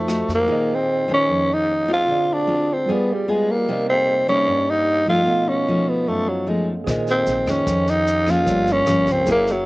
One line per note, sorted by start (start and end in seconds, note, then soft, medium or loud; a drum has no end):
0.00 0.25 F2 medium
0.00 0.47 F3 medium
0.00 0.30 A3 medium
0.00 0.45 D#4 medium
0.00 0.47 F#4 soft
0.00 0.48 A4 soft
0.00 0.49 C5 medium
0.07 0.34 A3 medium
0.07 0.34 D#4 medium
0.07 0.34 F#4 medium
0.07 cross-stick medium
0.07 snare soft
0.07 shaker medium
0.28 0.47 F2 medium
0.28 kick soft
0.28 snare soft
0.28 shaker soft
0.35 0.76 A#3 loud
0.46 1.26 A#2 medium
0.46 1.05 D#3 medium
0.46 1.05 G#3 medium
0.46 2.04 A#3 soft
0.46 2.05 D#4 soft
0.46 2.05 G#4 soft
0.50 2.06 C5 soft
0.50 2.07 D#5 medium
0.75 1.12 C4 medium
1.08 1.85 D#3 medium
1.08 1.85 G#3 medium
1.08 1.86 C#4 medium
1.14 1.55 C#4 loud
1.28 2.06 F2 medium
1.53 1.91 D#4 loud
1.88 2.45 G#3 medium
1.88 2.45 C4 medium
1.88 2.45 F4 medium
1.93 2.35 F4 loud
2.05 2.86 D3 medium
2.05 2.85 F4 medium
2.05 2.86 G#4 soft
2.09 2.87 C5 soft
2.09 2.88 D5 medium
2.34 2.75 D4 loud
2.47 2.75 G#3 medium
2.47 2.75 C4 medium
2.47 2.75 F4 medium
2.73 2.93 C4 medium
2.86 3.65 G3 medium
2.86 3.66 G3 medium
2.86 3.25 B3 medium
2.86 3.66 F4 soft
2.86 3.26 F4 medium
2.86 3.67 G#4 soft
2.86 3.26 G#4 medium
2.90 3.15 B3 loud
2.90 3.68 B4 soft
2.90 3.68 D5 medium
3.13 3.31 G3 medium
3.28 3.53 G#3 medium
3.28 3.54 B3 medium
3.28 3.54 F4 medium
3.28 3.54 G#4 medium
3.51 3.89 A#3 loud
3.66 4.46 C3 medium
3.66 4.25 G3 medium
3.66 4.26 A#3 medium
3.66 4.26 D#4 medium
3.66 5.24 G4 medium
3.66 5.25 A#4 soft
3.66 5.26 C5 soft
3.72 5.27 D#5 medium
3.89 4.26 C4 loud
4.28 5.05 G3 medium
4.28 5.05 A#3 medium
4.28 4.71 C#4 loud
4.28 5.05 D#4 medium
4.47 5.26 G2 medium
4.70 5.09 D#4 loud
5.07 5.64 F3 medium
5.07 5.64 A3 medium
5.07 5.65 D#4 medium
5.07 5.50 F4 loud
5.25 6.06 B2 medium
5.25 6.83 B3 soft
5.25 6.84 A4 soft
5.25 6.84 F#5 soft
5.29 6.85 D#5 soft
5.29 6.86 F5 medium
5.49 5.90 C#4 medium
5.68 6.45 F3 medium
5.68 6.45 A3 medium
5.68 6.45 D#4 medium
5.89 6.10 B3 medium
6.08 6.85 F#2 medium
6.08 6.30 A3 medium
6.29 6.50 F#3 medium
6.47 6.73 F3 medium
6.47 6.68 G#3 medium
6.47 6.73 A3 medium
6.47 6.73 D#4 medium
6.84 7.24 A#1 medium
6.84 7.65 A#2 medium
6.84 7.44 D#3 medium
6.84 7.44 G#3 medium
6.84 8.42 G#4 medium
6.84 8.43 C5 medium
6.84 kick medium
6.84 cross-stick medium
6.84 snare soft
6.84 shaker medium
6.88 8.44 A#4 medium
6.88 8.45 D#5 medium
7.07 7.52 C4 medium
7.07 snare soft
7.07 shaker soft
7.27 7.46 A#1 medium
7.27 snare soft
7.27 shaker medium
7.46 7.66 F2 medium
7.46 8.24 D#3 medium
7.46 8.24 G#3 medium
7.46 8.24 C#4 medium
7.46 kick soft
7.46 cross-stick medium
7.46 snare soft
7.46 shaker soft
7.51 7.91 C#4 loud
7.66 8.43 F2 medium
7.66 8.45 F2 medium
7.66 kick medium
7.66 snare soft
7.66 shaker medium
7.87 8.32 D#4 loud
7.87 snare soft
7.87 shaker soft
8.07 snare soft
8.07 shaker medium
8.27 8.84 F3 medium
8.27 8.84 A#3 medium
8.27 8.84 C#4 medium
8.27 8.74 F4 loud
8.27 kick soft
8.27 cross-stick medium
8.27 snare soft
8.27 shaker soft
8.43 8.84 G1 loud
8.43 9.25 G2 medium
8.43 9.23 G4 medium
8.43 9.25 A#4 soft
8.43 kick medium
8.43 snare soft
8.43 shaker medium
8.48 9.26 C#5 soft
8.48 9.26 F5 medium
8.67 snare soft
8.67 shaker soft
8.72 9.13 C#4 loud
8.86 9.05 G1 medium
8.86 9.25 F3 medium
8.86 9.25 A#3 medium
8.86 9.25 C#4 medium
8.86 cross-stick medium
8.86 snare soft
8.86 shaker medium
9.07 9.26 C#2 medium
9.07 kick soft
9.07 snare soft
9.07 shaker soft
9.12 9.29 C4 loud
9.24 9.66 F#1 medium
9.24 9.66 F#3 medium
9.24 9.53 A#3 medium
9.24 9.53 E4 medium
9.24 9.66 G#4 medium
9.24 9.53 G#4 medium
9.24 9.66 A#4 soft
9.24 kick medium
9.24 snare soft
9.24 shaker medium
9.29 9.53 A#3 loud
9.29 9.66 C#5 soft
9.29 9.66 E5 medium
9.47 snare soft
9.47 shaker soft
9.51 9.66 F#3 medium